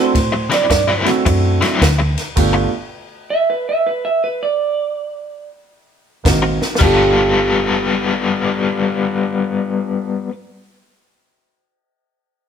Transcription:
0.00 0.12 A3 medium
0.00 0.12 C4 medium
0.00 0.12 D4 medium
0.00 0.12 E4 medium
0.00 0.12 F#4 medium
0.00 0.47 C5 medium
0.15 0.48 A2 medium
0.15 kick medium
0.15 snare soft
0.15 ride medium
0.32 muted overdriven electric guitar stroke medium
0.50 0.63 D3 medium
0.50 0.63 F#3 medium
0.50 0.63 C4 medium
0.50 0.63 E4 medium
0.50 1.03 D5 medium
0.50 snare soft
0.50 ride medium
0.70 1.04 G2 medium
0.70 muted overdriven electric guitar stroke soft
0.70 kick medium
0.70 snare medium
0.70 ride medium
0.88 1.09 D3 medium
0.88 1.09 F#3 medium
0.88 1.09 C4 medium
0.88 1.09 E4 medium
1.04 1.76 A3 medium
1.04 1.77 C4 medium
1.04 1.77 D4 medium
1.04 1.77 E4 medium
1.04 1.77 F#4 medium
1.04 snare soft
1.04 ride medium
1.26 1.60 F#2 loud
1.26 muted overdriven electric guitar stroke soft
1.26 kick medium
1.26 ride medium
1.61 1.71 D3 medium
1.61 1.70 F#3 medium
1.61 1.70 C4 medium
1.61 1.70 E4 medium
1.61 snare soft
1.61 ride medium
1.71 1.87 D3 medium
1.71 1.87 F#3 medium
1.71 1.86 C4 medium
1.71 1.86 E4 medium
1.82 2.15 D2 loud
1.82 kick medium
1.82 snare loud
1.82 ride medium
1.99 muted overdriven electric guitar stroke soft
2.17 snare soft
2.17 ride medium
2.36 2.66 G1 medium
2.36 2.68 A3 medium
2.36 2.68 B3 medium
2.36 2.69 D4 medium
2.36 2.69 F4 medium
2.36 2.69 G4 medium
2.36 kick medium
2.36 crash medium
2.36 ride medium
2.53 muted overdriven electric guitar stroke medium
3.30 3.48 E5 loud
3.50 3.67 B4 medium
3.69 3.85 E5 medium
3.87 4.03 B4 medium
4.05 4.22 E5 medium
4.24 4.41 B4 medium
4.43 5.49 D5 medium
6.24 6.59 G#1 medium
6.24 6.57 A#3 medium
6.24 6.57 C4 medium
6.24 6.57 D#4 medium
6.24 6.57 F#4 medium
6.24 6.58 A#4 medium
6.24 kick medium
6.24 snare loud
6.24 ride medium
6.42 muted overdriven electric guitar stroke medium
6.62 snare medium
6.74 9.98 G2 medium
6.74 10.01 G3 medium
6.74 snare medium
6.79 10.01 G1 medium
6.79 10.29 G3 medium
6.79 10.04 B3 medium
6.79 10.31 B3 medium
6.79 10.32 F4 medium
6.79 10.02 G4 medium
6.79 10.33 A4 loud
6.79 kick loud
6.79 crash medium
6.83 10.07 F4 medium
6.83 10.10 A4 medium

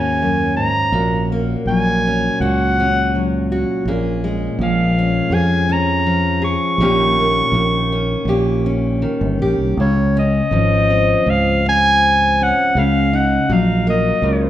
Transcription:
0.00 0.69 D#2 medium
0.00 0.21 G#2 medium
0.00 0.94 D#3 medium
0.00 0.95 G#3 medium
0.00 2.07 C#4 medium
0.00 0.90 F#4 medium
0.00 0.56 G#5 medium
0.22 0.56 F#2 medium
0.56 0.93 G#2 soft
0.56 1.26 A#5 loud
0.92 1.55 A#1 medium
0.92 2.41 A#2 medium
0.92 2.41 F#4 medium
1.32 3.91 A#3 medium
1.66 2.28 A#1 medium
1.66 3.14 F#3 medium
1.66 2.37 G#5 loud
2.07 2.79 C#4 medium
2.40 3.64 C#2 medium
2.40 3.87 A#2 medium
2.40 3.51 F#4 medium
2.40 3.47 F#5 loud
2.80 4.98 C#4 medium
3.15 3.83 F#3 medium
3.52 3.83 F#4 medium
3.85 4.47 A#1 medium
3.85 5.33 A#2 medium
3.85 5.31 G#4 medium
4.24 6.80 G#3 medium
4.59 5.21 A#1 medium
4.59 6.05 F3 medium
4.63 5.35 F5 medium
4.99 5.69 C#4 medium
5.30 6.55 F2 medium
5.30 6.79 F2 medium
5.30 6.41 G#4 medium
5.30 5.74 G#5 medium
5.69 6.82 C#4 medium
5.69 6.44 A#5 loud
6.06 6.76 F3 medium
6.42 6.75 G#4 medium
6.42 9.00 C#6 loud
6.78 7.41 A#1 medium
6.78 7.54 A#2 medium
6.78 7.53 D#3 medium
6.78 7.18 A#3 medium
6.82 7.91 C#4 medium
6.82 8.28 G4 medium
7.19 9.75 A#3 medium
7.52 8.15 A#1 loud
7.52 9.01 D#3 medium
7.92 8.65 C#4 medium
8.25 9.05 A#1 medium
8.25 9.03 A#2 medium
8.25 9.41 G4 medium
8.66 9.74 C#4 medium
9.02 9.78 D#3 medium
9.21 9.38 G1 medium
9.39 9.57 A#1 medium
9.39 9.74 G4 medium
9.58 9.76 C2 medium
9.77 10.40 C#2 medium
9.77 10.54 C#3 medium
9.77 10.14 C#5 medium
10.17 12.41 C#4 medium
10.17 11.32 D#5 loud
10.51 11.14 G#1 loud
10.51 12.71 F3 medium
10.90 11.64 C4 medium
11.26 12.51 C#2 medium
11.26 12.71 G#2 medium
11.30 11.66 F5 medium
11.66 12.72 C4 medium
11.66 12.45 G#5 loud
12.41 13.13 C#4 medium
12.41 12.80 F#5 loud
12.75 13.37 C#2 loud
12.75 13.50 C#3 medium
12.75 13.17 F5 loud
13.13 14.50 D#4 medium
13.13 13.54 F#5 medium
13.49 14.11 A#1 loud
13.49 14.50 F#3 medium
13.49 13.88 F5 medium
13.87 14.50 A#3 medium
13.87 14.50 D#5 medium
14.22 14.50 C#2 loud
14.22 14.50 C#3 medium

